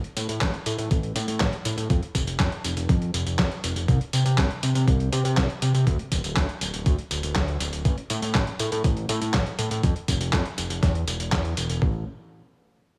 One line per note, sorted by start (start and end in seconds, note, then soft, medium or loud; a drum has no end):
0.04 closed hi-hat soft
0.17 0.27 A2 medium
0.17 closed hi-hat medium
0.17 tambourine medium
0.29 0.40 A2 medium
0.29 closed hi-hat medium
0.29 tambourine soft
0.41 0.52 A1 loud
0.41 kick loud
0.41 snare loud
0.41 clap loud
0.41 closed hi-hat medium
0.41 tambourine soft
0.54 closed hi-hat soft
0.66 0.77 A2 medium
0.66 closed hi-hat medium
0.66 tambourine medium
0.78 0.89 A2 medium
0.78 closed hi-hat medium
0.78 tambourine soft
0.91 1.13 A1 medium
0.91 kick loud
0.91 closed hi-hat soft
0.91 tambourine soft
1.03 closed hi-hat soft
1.16 1.27 A2 loud
1.16 closed hi-hat medium
1.16 tambourine medium
1.28 1.39 A2 loud
1.28 closed hi-hat medium
1.28 tambourine soft
1.40 1.51 A1 loud
1.40 kick loud
1.40 snare loud
1.40 clap loud
1.40 closed hi-hat soft
1.40 tambourine soft
1.53 closed hi-hat soft
1.65 1.76 A2 medium
1.65 closed hi-hat medium
1.65 tambourine medium
1.77 1.88 A2 medium
1.77 closed hi-hat medium
1.77 tambourine soft
1.90 2.01 F2 loud
1.90 kick loud
1.90 closed hi-hat soft
1.90 tambourine soft
2.03 closed hi-hat soft
2.15 2.26 F1 medium
2.15 kick medium
2.15 closed hi-hat medium
2.15 tambourine medium
2.27 2.38 F1 medium
2.27 closed hi-hat medium
2.27 tambourine soft
2.40 2.51 F2 medium
2.40 kick loud
2.40 snare loud
2.40 clap loud
2.40 closed hi-hat medium
2.40 tambourine soft
2.52 closed hi-hat soft
2.64 2.75 F1 medium
2.64 closed hi-hat medium
2.64 tambourine medium
2.77 2.88 F1 medium
2.77 closed hi-hat medium
2.77 tambourine soft
2.89 3.11 F2 medium
2.89 kick loud
2.89 closed hi-hat soft
2.89 tambourine soft
3.02 closed hi-hat soft
3.14 3.25 F1 loud
3.14 closed hi-hat medium
3.14 tambourine medium
3.26 3.37 F1 medium
3.26 closed hi-hat medium
3.26 tambourine soft
3.39 3.50 F2 medium
3.39 kick loud
3.39 snare loud
3.39 clap loud
3.39 closed hi-hat soft
3.39 tambourine soft
3.51 closed hi-hat soft
3.64 3.75 F1 medium
3.64 closed hi-hat medium
3.64 tambourine medium
3.76 3.87 F1 medium
3.76 closed hi-hat soft
3.76 tambourine soft
3.88 3.99 C2 loud
3.88 kick loud
3.88 closed hi-hat medium
3.88 tambourine soft
4.01 closed hi-hat soft
4.13 4.24 C3 medium
4.13 closed hi-hat medium
4.13 tambourine medium
4.26 4.37 C3 medium
4.26 closed hi-hat soft
4.26 tambourine soft
4.38 4.49 C2 loud
4.38 kick loud
4.38 snare loud
4.38 clap loud
4.38 closed hi-hat soft
4.38 tambourine soft
4.51 closed hi-hat soft
4.63 4.74 C3 medium
4.63 closed hi-hat medium
4.63 tambourine medium
4.75 4.86 C3 medium
4.75 closed hi-hat soft
4.75 tambourine soft
4.88 5.09 C2 medium
4.88 kick loud
4.88 closed hi-hat soft
4.88 tambourine soft
5.00 closed hi-hat soft
5.12 5.23 C3 loud
5.12 closed hi-hat medium
5.12 tambourine medium
5.25 5.36 C3 loud
5.25 closed hi-hat soft
5.25 tambourine soft
5.37 5.48 C2 loud
5.37 kick loud
5.37 snare loud
5.37 clap medium
5.37 closed hi-hat soft
5.37 tambourine soft
5.50 closed hi-hat soft
5.62 5.73 C3 loud
5.62 closed hi-hat medium
5.62 tambourine medium
5.74 5.85 C3 loud
5.74 closed hi-hat medium
5.74 tambourine soft
5.87 5.98 D2 loud
5.87 kick loud
5.87 closed hi-hat medium
5.87 tambourine soft
5.99 closed hi-hat soft
6.12 6.23 D1 medium
6.12 kick medium
6.12 closed hi-hat medium
6.12 tambourine medium
6.24 6.35 D1 medium
6.24 closed hi-hat medium
6.24 tambourine soft
6.36 6.47 D2 loud
6.36 kick loud
6.36 snare loud
6.36 clap loud
6.36 closed hi-hat medium
6.36 tambourine soft
6.49 closed hi-hat soft
6.61 6.72 D1 medium
6.61 closed hi-hat medium
6.61 tambourine medium
6.74 6.85 D1 loud
6.74 closed hi-hat medium
6.74 tambourine soft
6.86 6.97 D2 loud
6.86 kick loud
6.86 closed hi-hat medium
6.86 tambourine soft
6.99 closed hi-hat soft
7.11 7.22 D1 medium
7.11 closed hi-hat medium
7.11 tambourine medium
7.23 7.34 D1 loud
7.23 closed hi-hat soft
7.23 tambourine soft
7.36 7.57 D2 loud
7.36 kick loud
7.36 snare loud
7.36 clap loud
7.36 closed hi-hat medium
7.48 closed hi-hat soft
7.60 7.71 D1 loud
7.60 closed hi-hat medium
7.60 tambourine medium
7.73 7.84 D1 medium
7.73 closed hi-hat medium
7.73 tambourine soft
7.85 7.96 A1 medium
7.85 kick loud
7.85 closed hi-hat medium
7.85 tambourine soft
7.98 closed hi-hat soft
8.10 8.21 A2 medium
8.10 closed hi-hat loud
8.10 tambourine medium
8.22 8.33 A2 medium
8.22 closed hi-hat medium
8.22 tambourine soft
8.35 8.46 A1 medium
8.35 kick loud
8.35 snare loud
8.35 clap loud
8.35 closed hi-hat medium
8.35 tambourine soft
8.47 closed hi-hat soft
8.59 8.70 A2 medium
8.59 closed hi-hat loud
8.59 tambourine medium
8.72 8.83 A2 medium
8.72 closed hi-hat medium
8.72 tambourine soft
8.84 9.06 A1 medium
8.84 kick loud
8.84 closed hi-hat medium
8.84 tambourine soft
8.97 closed hi-hat soft
9.09 9.20 A2 loud
9.09 closed hi-hat medium
9.09 tambourine medium
9.21 9.32 A2 loud
9.21 closed hi-hat medium
9.21 tambourine soft
9.34 9.45 A1 loud
9.34 kick loud
9.34 snare loud
9.34 clap loud
9.34 closed hi-hat medium
9.34 tambourine soft
9.46 closed hi-hat soft
9.59 9.70 A2 loud
9.59 closed hi-hat medium
9.59 tambourine medium
9.71 9.82 A2 loud
9.71 closed hi-hat medium
9.71 tambourine soft
9.83 9.94 F2 loud
9.83 kick loud
9.83 closed hi-hat medium
9.83 tambourine soft
9.96 closed hi-hat soft
10.08 10.19 F1 medium
10.08 kick medium
10.08 closed hi-hat loud
10.08 tambourine medium
10.21 10.32 F1 medium
10.21 closed hi-hat medium
10.21 tambourine soft
10.33 10.44 F2 loud
10.33 kick loud
10.33 snare loud
10.33 clap loud
10.33 closed hi-hat medium
10.33 tambourine soft
10.45 closed hi-hat soft
10.58 10.69 F1 medium
10.58 closed hi-hat loud
10.58 tambourine medium
10.70 10.81 F1 loud
10.70 closed hi-hat medium
10.70 tambourine soft
10.83 11.04 E2 medium
10.83 kick loud
10.83 snare medium
10.83 closed hi-hat medium
10.83 tambourine soft
10.95 closed hi-hat soft
11.07 11.18 E1 medium
11.07 closed hi-hat medium
11.07 tambourine medium
11.20 11.31 E1 loud
11.20 closed hi-hat medium
11.20 tambourine soft
11.32 11.54 E2 medium
11.32 kick loud
11.32 snare loud
11.32 clap loud
11.32 closed hi-hat medium
11.32 tambourine soft
11.45 closed hi-hat soft
11.57 11.68 E1 medium
11.57 closed hi-hat loud
11.57 tambourine medium
11.69 11.80 E1 loud
11.69 closed hi-hat medium
11.69 tambourine soft
11.82 12.05 A1 loud
11.82 kick loud